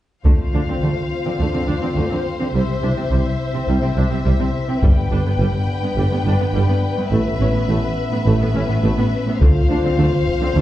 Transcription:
0.24 double bass section D2, tuba D2, cello section D3, viola section A3, french horn section C4 F4, violin section C5 F5, taiko
0.53 double bass section D2, tuba D2, cello section D3, viola section D4
0.67 cello section D3, viola section C4
0.82 double bass section D2, tuba D2, cello section D3, viola section A3
1.25 cello section D3, viola section C4
1.39 double bass section D2, tuba D2, cello section D3, viola section A3
1.53 cello section D3, viola section C4
1.67 double bass section D2, tuba D2, cello section D3, viola section D4
1.81 cello section D3, viola section C4
1.96 double bass section D2, tuba D2, cello section D3, viola section A3
2.10 cello section D3, viola section C4
2.39 cello section D3, viola section C4
2.53 double bass section C2, tuba C2, cello section C3, viola section G3, french horn section E4, violin section E5
2.82 double bass section C2, tuba C2, cello section C3, viola section D4
2.96 cello section C3, viola section C4
3.10 double bass section C2, tuba C2, cello section C3, viola section G3
3.54 cello section C3, viola section C4
3.68 double bass section C2, tuba C2, cello section C3, viola section G3
3.82 cello section C3, viola section C4
3.96 double bass section C2, tuba C2, cello section C3, viola section D4
4.11 cello section C3, viola section C4
4.25 tuba C2, double bass section C2, cello section C3, viola section G3
4.40 cello section C3, viola section C4
4.68 cello section C3, viola section C4
4.82 tuba G1, double bass section G1, cello section G2, viola section G3, french horn section B3 D4, violin section B4 G5, taiko
5.10 double bass section G1, tuba G1, cello section G2, viola section D4
5.25 cello section G2, viola section B3
5.38 tuba G1, double bass section G1, cello section G2, viola section G3
5.81 cello section G2, viola section B3
5.96 double bass section G1, tuba G1, cello section G2, viola section G3
6.10 cello section G2, viola section B3
6.25 double bass section G1, tuba G1, cello section G2, viola section D4
6.39 cello section G2, viola section B3
6.53 tuba G1, double bass section G1, cello section G2, viola section G3
6.67 cello section G2, viola section B3
6.96 cello section G2, viola section B3
7.10 tuba A1, double bass section A1, cello section A2, viola section A3, french horn section C#4, violin section E5
7.39 double bass section A1, tuba A1, cello section A2, viola section C#4
7.52 cello section A2, viola section B3
7.67 tuba A1, double bass section A1, cello section A2, viola section A3
8.10 cello section A2, viola section B3
8.24 tuba A1, double bass section A1, cello section A2, viola section A3
8.39 cello section A2, viola section B3
8.53 tuba A1, double bass section A1, cello section A2, viola section C#4
8.68 cello section A2, viola section B3
8.82 tuba A1, double bass section A1, cello section A2, viola section A3
8.97 cello section A2, viola section B3
9.25 cello section A2, viola section B3
9.40 tuba D2, double bass section D2, cello section D3, viola section A3, french horn section C4 F4, violin section C5 F5, taiko
9.68 tuba D2, double bass section D2, cello section D3, viola section D4
9.83 cello section D3, viola section C4
9.97 tuba D2, double bass section D2, cello section D3, viola section A3
10.27 taiko
10.40 cello section D3, viola section C4
10.54 double bass section D2, tuba D2, cello section D3, viola section A3

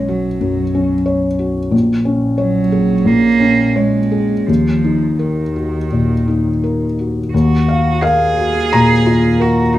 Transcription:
Already playing: felt piano B1 C#4 F#4 C#5, double bass B1, cello G#3
0.08 cello F#3, felt piano F#4
0.41 felt piano F#2
0.75 felt piano C#4
1.06 felt piano C#5
1.39 felt piano F#4
1.71 felt piano A#1, double bass A#1
2.05 felt piano C#4
2.38 cello F#3, felt piano C#5
2.72 felt piano G#4
3.05 felt piano A#1, cello A#3
3.40 felt piano C#4
3.75 cello G#3, felt piano C#5
4.12 felt piano G#4
4.47 double bass D#2, felt piano D#2, cello F3
4.84 felt piano D#4
5.19 cello D#3, felt piano A#4
5.56 felt piano F#4
5.92 felt piano A#2
6.28 felt piano D#4
6.64 felt piano A#4
6.99 felt piano F#4
7.32 double bass D#2, felt piano D#2, cello F#4
7.68 felt piano F5
8.01 cello G#4, felt piano A#4 F5
8.38 felt piano F#4
8.73 felt piano A#2 A#5
9.06 felt piano F4
9.39 cello F#4, felt piano A#4
9.73 cello D#4, felt piano F#4

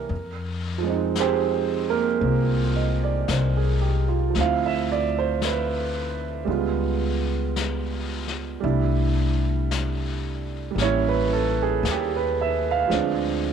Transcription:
Already playing: upright piano E3 G3 A#3 C#4 E4 G4 A#4
0.09 upright bass F2, brush sweep
0.78 upright piano F3 G#3
0.86 upright piano C4 D#4
1.15 brush sweep, snare, hi-hat pedal
1.20 upright piano C4 G4 G#4 C5
1.90 upright piano A#3 A#4
2.21 upright bass C2, upright piano C4 F4, brush sweep
2.76 upright piano D#5
3.04 upright piano D5
3.28 upright bass C2, upright piano C5, brush sweep, snare, hi-hat pedal
3.57 upright piano G#4
3.81 upright piano G4
4.08 upright piano F4
4.30 upright piano F3 A3
4.35 upright bass D2, upright piano C4, brush sweep, snare
4.40 upright piano E4 F5
4.66 upright piano E5
4.92 upright piano D5
5.19 upright piano C5
5.42 upright piano B4, brush sweep, snare, hi-hat pedal
6.45 upright bass C#2, upright piano G3 G#3 B3, brush sweep
6.50 upright piano F4
7.56 brush sweep, snare, hi-hat pedal
8.28 snare
8.60 upright bass C2, upright piano G3 A3 D4 E4, brush sweep
9.71 brush sweep, snare, hi-hat pedal
10.71 upright piano G3
10.75 upright bass A1, upright piano A#3 C#4, brush sweep, snare
10.82 upright piano E4 C#5
11.09 upright piano B4
11.33 upright piano A4
11.62 upright piano G#4
11.83 upright bass D#2, brush sweep, snare, hi-hat pedal
11.91 upright piano G4
12.17 upright piano B4
12.41 upright piano E5
12.71 upright piano F5
12.88 upright bass D2, upright piano F3 G#3 C4, brush sweep, snare
12.93 upright piano D4

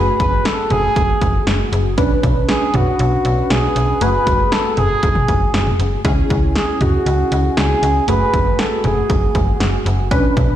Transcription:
Already playing: fm bass F#1, analog polysynth A3 F#4 G#4, analog synth lead B4
0.20 fm bass F#1, analog synth lead B4, kick, closed hi-hat
0.45 analog synth lead A4, snare, closed hi-hat
0.70 fm bass F#1, analog synth lead G#4, closed hi-hat, mid tom
0.96 fm bass F#1, kick, closed hi-hat
1.22 fm bass F#1, kick, closed hi-hat
1.47 fm bass F#1, snare, closed hi-hat
1.72 fm bass F#1, closed hi-hat
1.98 fm bass B1, analog polysynth C#4 D4 B4, kick, closed hi-hat
2.23 fm bass B1, kick, closed hi-hat
2.49 analog synth lead G#4, snare, closed hi-hat
2.74 fm bass B1, analog synth lead F#4, closed hi-hat, mid tom
2.99 fm bass B1, closed hi-hat
3.25 fm bass B1, closed hi-hat
3.50 fm bass B1, analog synth lead G#4, snare, closed hi-hat
3.76 fm bass B1, closed hi-hat
4.01 fm bass F#1, analog polysynth A3 F#4 G#4, analog synth lead B4, closed hi-hat
4.27 fm bass F#1, kick, closed hi-hat
4.52 analog synth lead A4, snare, closed hi-hat
4.77 fm bass F#1, analog synth lead G#4, closed hi-hat, mid tom
5.03 fm bass F#1, kick, closed hi-hat
5.15 mid tom
5.28 fm bass F#1, kick, closed hi-hat
5.54 fm bass F#1, snare, closed hi-hat
5.67 mid tom
5.79 fm bass F#1, closed hi-hat
6.05 fm bass C#2, analog polysynth C#4 E4 G#4, kick, closed hi-hat
6.30 fm bass C#2, kick, closed hi-hat
6.55 analog synth lead G#4, snare, closed hi-hat
6.81 fm bass C#2, analog synth lead F#4, closed hi-hat, mid tom
7.06 fm bass C#2, closed hi-hat
7.32 fm bass C#2, closed hi-hat
7.57 fm bass C#2, analog synth lead G#4, snare, closed hi-hat
7.83 fm bass C#2, closed hi-hat
8.08 fm bass F#1, analog polysynth A3 F#4 G#4, analog synth lead B4, closed hi-hat
8.34 fm bass F#1, kick, closed hi-hat
8.59 analog synth lead A4, snare, closed hi-hat
8.84 fm bass F#1, analog synth lead G#4, closed hi-hat, mid tom
9.10 fm bass F#1, kick, closed hi-hat
9.35 fm bass F#1, kick, closed hi-hat
9.60 fm bass F#1, snare, closed hi-hat
9.86 fm bass F#1, closed hi-hat
10.11 fm bass B1, analog polysynth C#4 D4 B4, kick, closed hi-hat
10.37 fm bass B1, kick, closed hi-hat

